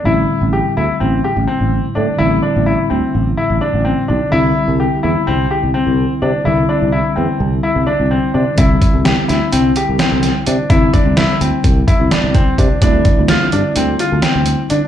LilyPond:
<<
  \new Staff \with { instrumentName = "Grand piano" } { \time 9/8 \key a \minor \tempo 4. = 85 e'4 g'8 e'8 c'8 g'8 c'4 d'8 | e'8 d'8 e'8 c'4 e'8 d'8 c'8 d'8 | e'4 g'8 e'8 c'8 g'8 c'4 d'8 | e'8 d'8 e'8 c'4 e'8 d'8 c'8 d'8 |
e'4 g'8 e'8 c'8 g'8 c'4 d'8 | e'8 d'8 e'8 c'4 e'8 d'8 c'8 d'8 | d'4 f'8 d'8 c'8 f'8 c'4 d'8 | }
  \new Staff \with { instrumentName = "Tine electric piano" } { \time 9/8 \key a \minor <d g c' e'>1~ <d g c' e'>8 | <d g c' e'>1~ <d g c' e'>8 | <d g c' e'>1~ <d g c' e'>8 | <d g c' e'>1~ <d g c' e'>8 |
<d g c' e'>1~ <d g c' e'>8 | <d g c' e'>1~ <d g c' e'>8 | <d g c' e'>1~ <d g c' e'>8 | }
  \new Staff \with { instrumentName = "Fretless electric bass" } { \clef bass \time 9/8 \key a \minor a,,8 r16 a,,8 r16 d,16 r16 a,,8 r16 a,,16 r16 a,,8 r16 a,16 r16 | a,,8 r16 a,,8 r16 d,16 r16 a,,8 r16 a,,16 r16 a,,8 r16 b,,16 r16 | c,8 r16 c,8 r16 e,16 r16 c,8 r16 c,16 r16 c,8 r16 c16 r16 | c,8 r16 c,8 r16 e,16 r16 c,8 r16 c,16 r16 c,8 r16 c16 r16 |
c,8 r16 c,8 r16 d,16 r16 c,8 r16 c,16 r16 c,8 r16 c16 r16 | c,8 r16 c,8 r16 d,16 r16 c,8 r16 c,16 r16 c,8 r16 c16 r16 | d,8 r16 d,8 r16 g,16 r16 d,8 r16 d,16 r16 d,8 r16 d16 r16 | }
  \new DrumStaff \with { instrumentName = "Drums" } \drummode { \time 9/8 r4 r4 r4 r4. | r4 r4 r4 r4. | r4 r4 r4 r4. | r4 r4 r4 r4. |
<hh bd>8 <hh bd>8 <hh sn>8 <hh sn>8 hh8 hh8 <hh sn>8 <hh sn>8 hh8 | <hh bd>8 <hh bd>8 <hh sn>8 hh8 <hh bd>8 <hh bd>8 <hh sn>8 <hh bd>8 <hh bd>8 | <hh bd>8 <hh bd>8 <hh sn>8 hh8 hh8 hh8 <hh sn>8 hh8 hh8 | }
>>